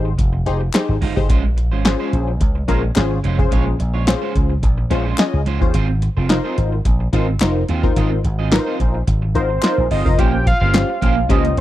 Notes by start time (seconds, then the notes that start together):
Already playing: G#1 C5
0.05 muted clean electric guitar stroke
0.18 F1, muted clean electric guitar stroke, kick, closed hi-hat
0.33 muted clean electric guitar stroke
0.46 F1 D#4 G4 G#4 C5, closed hi-hat
0.61 muted clean electric guitar stroke
0.73 D#4 G4 G#4 C5, snare, clap, closed hi-hat
0.89 G#1, muted clean electric guitar stroke
1.01 G1 G#3 D#4 F4 C5, open hi-hat
1.16 F1 D#4 G4 G#4 C5, muted clean electric guitar stroke, kick
1.29 A#1 G#3 C#4 F4 C5, kick, closed hi-hat
1.44 muted clean electric guitar stroke
1.57 muted clean electric guitar stroke, closed hi-hat
1.72 G#1 G#3 C#4 F4 C5
1.85 C#4 F4 G#4 C5, muted clean electric guitar stroke, snare, clap, closed hi-hat
2.00 G#3 C#4 F4 C5
2.13 A#1, muted clean electric guitar stroke, closed hi-hat
2.28 muted clean electric guitar stroke
2.41 C#2, muted clean electric guitar stroke, kick, closed hi-hat
2.55 muted clean electric guitar stroke
2.68 A#1 G#3 C#4 F4 G#4 A#4 C5, kick, closed hi-hat
2.83 muted clean electric guitar stroke
2.96 G#1 C#4 F4 G#4 C5, snare, clap, closed hi-hat
3.11 muted clean electric guitar stroke
3.24 F1 G#3 C#4 F4 C5, closed hi-hat
3.38 C#4 F4 G#4 C5, muted clean electric guitar stroke, kick
3.51 A#1 G#3 C#4 F4 C#5, kick, closed hi-hat
3.66 muted clean electric guitar stroke
3.79 A#1, muted clean electric guitar stroke, closed hi-hat
3.94 G#3 C#4 F4 C#5
4.07 C#4 F4 G#4 C5, muted clean electric guitar stroke, snare, clap, closed hi-hat
4.22 G#3 C#4 F4 C5
4.35 C#2, muted clean electric guitar stroke, kick, closed hi-hat
4.50 muted clean electric guitar stroke
4.63 A#1, muted clean electric guitar stroke, kick, closed hi-hat
4.78 muted clean electric guitar stroke
4.90 A#1 G#3 C#4 F4 G#4 C5, closed hi-hat
5.05 G#3 C#4 F4 C5
5.18 C#4 F4 G#4 D#5, snare, clap, closed hi-hat
5.33 C#2, muted clean electric guitar stroke
5.46 C#2 G#3 C#4 F4 C5, closed hi-hat
5.61 D#2 C#4 F4 G#4 C5, muted clean electric guitar stroke, kick
5.74 G#1 C4 F4 G#4 C5, kick, closed hi-hat
5.89 muted clean electric guitar stroke
6.02 muted clean electric guitar stroke, closed hi-hat
6.17 F1 C4 F4 G#4 C5
6.29 D#4 F4 A#4 C5, snare, clap, closed hi-hat
6.44 C4 F4 G#4 C5
6.57 G#1, muted clean electric guitar stroke, closed hi-hat
6.72 muted clean electric guitar stroke
6.85 A#1, muted clean electric guitar stroke, kick, closed hi-hat
7.00 muted clean electric guitar stroke
7.13 G#1 C4 D#4 F4 G#4 A#4 C5, kick, closed hi-hat
7.28 muted clean electric guitar stroke
7.40 F1 D#4 F4 A#4 C5, snare, clap, closed hi-hat
7.56 muted clean electric guitar stroke
7.69 D#2 C4 F4 G#4 C5, closed hi-hat
7.83 D#4 F4 A#4 C5, muted clean electric guitar stroke, kick
7.96 G#1 C4 F4 G#4 D#5, kick, closed hi-hat
8.11 muted clean electric guitar stroke
8.24 G#1, muted clean electric guitar stroke, closed hi-hat
8.39 C4 F4 G#4 D#5
8.52 D#4 F4 A#4 B4, muted clean electric guitar stroke, snare, clap, closed hi-hat
8.59 C5
8.66 C4 F4 G#4 C5
8.80 A#1, muted clean electric guitar stroke, kick, closed hi-hat
8.94 muted clean electric guitar stroke
9.07 G#1, muted clean electric guitar stroke, kick, closed hi-hat
9.22 muted clean electric guitar stroke
9.35 G#1 D#4 F4 A#4 C5, closed hi-hat
9.50 muted clean electric guitar stroke
9.62 D#4 F4 A#4 C5, muted clean electric guitar stroke, snare, clap, closed hi-hat
9.78 A#1, muted clean electric guitar stroke
9.91 G1 C4 F4 G#4 C5 D#5, open hi-hat
10.05 F1 D#4 F4 A#4 C5, muted clean electric guitar stroke, kick
10.18 A#1 A#3 C#4 F4 G4 C5 G5, kick, closed hi-hat
10.33 muted clean electric guitar stroke
10.46 F5, muted clean electric guitar stroke, kick, closed hi-hat
10.61 G1 A#3 C#4 G4 C5
10.74 C#4 F4 G4 C5, snare, clap, closed hi-hat
10.89 muted clean electric guitar stroke
11.02 A#1 A#3 C#4 G4 C5 F5, kick, closed hi-hat
11.17 muted clean electric guitar stroke
11.29 C#2 A#3 C#4 F4 G4 C5 D#5, kick, closed hi-hat
11.44 muted clean electric guitar stroke, closed hi-hat
11.57 A#1, muted clean electric guitar stroke, closed hi-hat